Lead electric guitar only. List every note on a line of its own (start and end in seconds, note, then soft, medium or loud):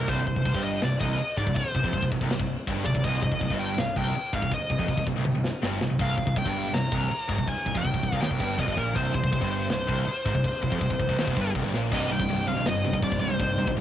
0.09 0.25 C5 medium
0.26 0.61 C5 medium
0.64 0.83 D#5 loud
0.84 1.00 D5 loud
1.00 1.37 D#5 medium
1.37 1.55 D5 medium
1.56 2.07 C5 medium
2.85 3.04 D5 medium
3.04 3.22 D#5 medium
3.23 3.61 D#5 loud
3.59 3.79 G5 loud
3.79 3.97 F5 loud
3.98 4.34 G5 loud
4.34 4.53 F5 medium
4.54 5.04 D#5 medium
6.02 6.35 F5 loud
6.39 6.76 G5 medium
6.74 7.48 A#5 loud
7.49 7.77 G#5 loud
7.77 8.21 G5 medium
8.22 8.56 G5 medium
8.59 8.78 D#5 medium
8.78 8.97 A#4 medium
8.95 9.13 C5 medium
9.15 9.49 C5 medium
9.51 11.51 C5 medium
11.93 12.12 D#5 loud
12.12 12.48 G5 medium
12.48 12.67 F5 medium
12.67 13.01 D#5 loud
13.04 13.20 D5 medium
13.20 13.73 C5 medium